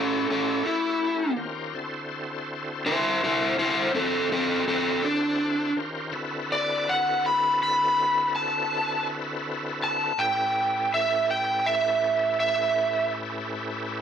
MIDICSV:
0, 0, Header, 1, 3, 480
1, 0, Start_track
1, 0, Tempo, 734394
1, 898, Time_signature, 12, 3, 24, 8
1, 9160, End_track
2, 0, Start_track
2, 0, Title_t, "Electric slide guitar"
2, 0, Program_c, 0, 29
2, 0, Note_on_c, 0, 61, 76
2, 0, Note_on_c, 0, 69, 81
2, 165, Note_off_c, 0, 61, 0
2, 176, Note_off_c, 0, 69, 0
2, 199, Note_on_c, 0, 61, 65
2, 204, Note_on_c, 0, 69, 74
2, 412, Note_off_c, 0, 61, 0
2, 424, Note_off_c, 0, 69, 0
2, 428, Note_on_c, 0, 64, 85
2, 889, Note_off_c, 0, 64, 0
2, 1868, Note_on_c, 0, 64, 80
2, 1872, Note_on_c, 0, 72, 87
2, 2098, Note_off_c, 0, 72, 0
2, 2103, Note_off_c, 0, 64, 0
2, 2117, Note_on_c, 0, 64, 72
2, 2118, Note_on_c, 0, 72, 78
2, 2331, Note_off_c, 0, 64, 0
2, 2338, Note_off_c, 0, 72, 0
2, 2347, Note_on_c, 0, 64, 74
2, 2347, Note_on_c, 0, 72, 83
2, 2566, Note_off_c, 0, 64, 0
2, 2574, Note_off_c, 0, 72, 0
2, 2578, Note_on_c, 0, 60, 65
2, 2584, Note_on_c, 0, 69, 84
2, 2801, Note_off_c, 0, 60, 0
2, 2813, Note_off_c, 0, 69, 0
2, 2823, Note_on_c, 0, 60, 81
2, 2827, Note_on_c, 0, 69, 96
2, 3043, Note_off_c, 0, 60, 0
2, 3050, Note_off_c, 0, 69, 0
2, 3056, Note_on_c, 0, 60, 70
2, 3059, Note_on_c, 0, 69, 83
2, 3280, Note_off_c, 0, 60, 0
2, 3290, Note_off_c, 0, 69, 0
2, 3298, Note_on_c, 0, 62, 95
2, 3763, Note_off_c, 0, 62, 0
2, 4262, Note_on_c, 0, 74, 87
2, 4492, Note_off_c, 0, 74, 0
2, 4504, Note_on_c, 0, 78, 80
2, 4733, Note_off_c, 0, 78, 0
2, 4746, Note_on_c, 0, 83, 94
2, 4974, Note_off_c, 0, 83, 0
2, 4985, Note_on_c, 0, 83, 79
2, 5447, Note_off_c, 0, 83, 0
2, 5461, Note_on_c, 0, 81, 85
2, 5925, Note_off_c, 0, 81, 0
2, 6429, Note_on_c, 0, 81, 93
2, 6657, Note_off_c, 0, 81, 0
2, 6659, Note_on_c, 0, 79, 84
2, 7125, Note_off_c, 0, 79, 0
2, 7150, Note_on_c, 0, 76, 77
2, 7378, Note_off_c, 0, 76, 0
2, 7389, Note_on_c, 0, 79, 84
2, 7618, Note_off_c, 0, 79, 0
2, 7623, Note_on_c, 0, 76, 94
2, 8088, Note_off_c, 0, 76, 0
2, 8105, Note_on_c, 0, 76, 101
2, 8569, Note_off_c, 0, 76, 0
2, 9160, End_track
3, 0, Start_track
3, 0, Title_t, "Tonewheel organ"
3, 0, Program_c, 1, 16
3, 0, Note_on_c, 1, 57, 68
3, 0, Note_on_c, 1, 61, 68
3, 0, Note_on_c, 1, 64, 62
3, 0, Note_on_c, 1, 66, 63
3, 0, Note_on_c, 1, 67, 73
3, 0, Note_on_c, 1, 69, 65
3, 869, Note_off_c, 1, 64, 0
3, 869, Note_off_c, 1, 66, 0
3, 870, Note_off_c, 1, 57, 0
3, 870, Note_off_c, 1, 67, 0
3, 870, Note_off_c, 1, 69, 0
3, 871, Note_off_c, 1, 61, 0
3, 890, Note_on_c, 1, 72, 58
3, 892, Note_on_c, 1, 70, 61
3, 893, Note_on_c, 1, 61, 59
3, 893, Note_on_c, 1, 67, 67
3, 895, Note_on_c, 1, 51, 66
3, 895, Note_on_c, 1, 65, 64
3, 1131, Note_off_c, 1, 72, 0
3, 1135, Note_off_c, 1, 61, 0
3, 1135, Note_off_c, 1, 67, 0
3, 1135, Note_off_c, 1, 70, 0
3, 1136, Note_off_c, 1, 65, 0
3, 1136, Note_on_c, 1, 66, 65
3, 1137, Note_off_c, 1, 51, 0
3, 1138, Note_on_c, 1, 50, 71
3, 1139, Note_on_c, 1, 64, 67
3, 1139, Note_on_c, 1, 72, 61
3, 1140, Note_on_c, 1, 60, 68
3, 1143, Note_on_c, 1, 69, 71
3, 3749, Note_off_c, 1, 66, 0
3, 3751, Note_off_c, 1, 50, 0
3, 3751, Note_off_c, 1, 60, 0
3, 3751, Note_off_c, 1, 64, 0
3, 3751, Note_off_c, 1, 72, 0
3, 3753, Note_off_c, 1, 69, 0
3, 3766, Note_on_c, 1, 70, 62
3, 3768, Note_on_c, 1, 61, 59
3, 3768, Note_on_c, 1, 65, 61
3, 3769, Note_on_c, 1, 51, 62
3, 3770, Note_on_c, 1, 67, 61
3, 3770, Note_on_c, 1, 72, 58
3, 3998, Note_on_c, 1, 64, 66
3, 3999, Note_on_c, 1, 50, 67
3, 4000, Note_on_c, 1, 66, 67
3, 4002, Note_on_c, 1, 69, 68
3, 4005, Note_on_c, 1, 60, 65
3, 4006, Note_on_c, 1, 71, 72
3, 4011, Note_off_c, 1, 70, 0
3, 4012, Note_off_c, 1, 61, 0
3, 4012, Note_off_c, 1, 65, 0
3, 4013, Note_off_c, 1, 51, 0
3, 4013, Note_off_c, 1, 67, 0
3, 4013, Note_off_c, 1, 72, 0
3, 6623, Note_off_c, 1, 50, 0
3, 6623, Note_off_c, 1, 64, 0
3, 6624, Note_off_c, 1, 66, 0
3, 6625, Note_off_c, 1, 69, 0
3, 6626, Note_off_c, 1, 60, 0
3, 6627, Note_off_c, 1, 71, 0
3, 6651, Note_on_c, 1, 71, 74
3, 6652, Note_on_c, 1, 45, 70
3, 6655, Note_on_c, 1, 69, 64
3, 6656, Note_on_c, 1, 64, 69
3, 6656, Note_on_c, 1, 67, 70
3, 6658, Note_on_c, 1, 61, 67
3, 9160, Note_off_c, 1, 45, 0
3, 9160, Note_off_c, 1, 61, 0
3, 9160, Note_off_c, 1, 64, 0
3, 9160, Note_off_c, 1, 67, 0
3, 9160, Note_off_c, 1, 69, 0
3, 9160, Note_off_c, 1, 71, 0
3, 9160, End_track
0, 0, End_of_file